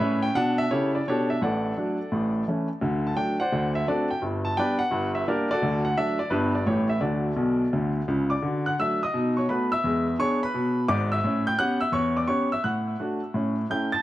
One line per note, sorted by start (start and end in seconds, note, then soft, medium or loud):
0.00 0.28 A2 medium
0.00 0.29 C#4 medium
0.00 0.22 B4 medium
0.00 0.22 C#5 medium
0.00 0.18 E5 medium
0.23 0.34 G5 medium
0.35 0.64 B2 medium
0.35 0.65 D4 medium
0.35 0.55 F#5 loud
0.58 0.69 E5 loud
0.71 0.99 C#3 medium
0.71 1.00 E4 medium
0.71 0.93 G4 medium
0.71 0.93 A4 medium
0.71 0.90 C#5 medium
0.95 1.05 D5 medium
1.08 1.35 B2 medium
1.08 1.37 D4 medium
1.08 1.29 G4 medium
1.08 1.29 A4 medium
1.08 1.27 C#5 medium
1.30 1.40 E5 medium
1.42 1.72 A1 medium
1.42 1.72 A2 medium
1.42 2.44 A4 medium
1.42 2.44 D5 medium
1.42 2.32 F#5 medium
1.77 1.96 F#3 soft
1.77 1.97 A3 soft
1.77 1.97 D4 soft
2.12 2.42 A1 medium
2.12 2.42 A2 medium
2.48 2.67 E3 soft
2.48 2.67 A3 soft
2.48 2.68 C#4 soft
2.81 3.12 D2 medium
2.81 3.12 D3 medium
3.07 3.17 A5 medium
3.15 3.35 F#3 soft
3.15 3.36 A3 soft
3.15 3.36 D4 soft
3.15 3.36 G5 medium
3.40 3.74 C5 medium
3.40 3.73 D5 soft
3.40 3.70 F#5 medium
3.52 3.82 D2 medium
3.52 3.82 D3 medium
3.75 3.86 E5 medium
3.87 4.07 A3 soft
3.87 4.08 C4 soft
3.87 4.08 D4 soft
3.87 4.10 F#4 medium
3.87 4.10 A4 medium
3.87 4.08 D5 medium
4.11 4.21 G5 medium
4.22 4.52 G1 medium
4.22 4.52 G2 medium
4.45 4.56 A5 medium
4.57 4.77 G3 medium
4.57 4.77 B3 soft
4.57 4.78 D4 soft
4.57 4.80 B4 medium
4.57 4.80 D5 medium
4.57 4.77 G5 medium
4.79 5.10 F#5 medium
4.91 5.22 G1 medium
4.91 5.22 G2 medium
5.15 5.26 E5 medium
5.27 5.47 G3 soft
5.27 5.47 A#3 soft
5.27 5.48 D4 soft
5.27 5.50 G4 medium
5.27 5.50 A#4 medium
5.27 5.48 D5 medium
5.51 5.85 F#4 medium
5.51 5.85 A4 medium
5.51 5.81 D5 medium
5.62 5.93 D2 medium
5.62 5.93 D3 medium
5.85 5.96 F#5 medium
5.97 6.17 F#3 soft
5.97 6.18 A3 soft
5.97 6.17 D4 medium
5.97 6.17 E5 medium
6.19 6.31 D5 medium
6.30 6.62 G1 medium
6.30 6.62 G2 medium
6.30 6.51 G3 soft
6.30 6.51 B3 soft
6.30 6.54 D4 medium
6.30 6.54 G4 soft
6.30 6.51 B4 medium
6.55 6.66 D5 medium
6.66 6.97 A1 medium
6.66 6.97 A2 medium
6.66 6.87 G3 soft
6.66 6.87 A3 soft
6.66 6.87 E4 soft
6.66 6.90 G4 medium
6.66 6.89 A4 soft
6.66 6.87 C#5 medium
6.89 7.01 E5 medium
7.01 7.30 D2 medium
7.01 7.30 D3 soft
7.01 8.05 F#4 soft
7.01 8.04 A4 soft
7.01 7.92 D5 medium
7.36 7.64 B1 medium
7.36 7.64 B2 medium
7.73 8.00 D2 medium
7.73 8.00 D3 medium
8.08 8.35 C#2 medium
8.08 8.35 C#3 medium
8.30 8.64 D5 soft
8.30 8.61 D6 medium
8.42 8.73 D3 medium
8.42 8.64 F#4 soft
8.66 8.79 F#5 medium
8.66 8.77 F#6 medium
8.79 8.99 F#3 soft
8.79 8.99 A3 soft
8.79 8.99 D4 soft
8.79 9.02 E5 medium
8.79 8.99 E6 medium
9.03 9.36 D#5 medium
9.03 9.33 D#6 medium
9.14 9.44 B2 medium
9.14 9.36 D#4 soft
9.37 9.49 C#5 medium
9.37 9.47 C#6 medium
9.49 9.69 A3 soft
9.49 9.69 B3 soft
9.49 9.69 F#4 soft
9.49 9.71 B4 medium
9.49 9.69 B5 medium
9.72 10.17 E5 medium
9.72 10.12 E6 medium
9.84 10.14 E2 medium
9.84 10.05 G#3 medium
10.19 10.39 B3 soft
10.19 10.38 D4 soft
10.19 10.39 G#4 medium
10.19 10.41 C#5 medium
10.19 10.39 C#6 loud
10.43 10.88 B4 medium
10.43 10.83 B5 medium
10.54 10.84 B2 medium
10.88 11.17 G#1 medium
10.88 11.17 G#2 medium
10.88 11.11 D5 medium
10.88 11.08 D6 medium
11.12 11.45 E5 medium
11.12 11.42 E6 medium
11.24 11.54 A2 medium
11.24 11.45 C#4 medium
11.47 11.59 G5 medium
11.47 11.58 G6 medium
11.59 11.79 B3 medium
11.59 11.79 C#4 medium
11.59 11.79 G4 medium
11.59 11.81 F#5 medium
11.59 11.79 F#6 loud
11.81 11.94 E5 medium
11.81 11.92 E6 medium
11.92 12.23 E2 medium
11.92 12.15 C#5 medium
11.92 12.13 C#6 medium
12.17 12.29 D5 soft
12.17 12.28 D6 medium
12.27 12.47 B3 soft
12.27 12.48 C#4 soft
12.27 12.48 G4 soft
12.27 12.51 C#5 medium
12.27 12.48 C#6 medium
12.52 12.64 E5 medium
12.52 12.63 E6 medium
12.64 12.94 A2 medium
12.64 13.66 F#5 soft
12.64 13.54 F#6 medium
13.00 13.19 A3 soft
13.00 13.20 D4 soft
13.00 13.20 F#4 soft
13.34 13.64 A2 medium
13.34 13.55 C#4 soft
13.70 13.89 A3 soft
13.70 13.90 C#4 soft
13.70 13.90 E4 soft
13.70 13.92 G5 soft
13.70 13.90 G6 medium
13.92 14.02 A5 medium
13.92 14.02 A6 medium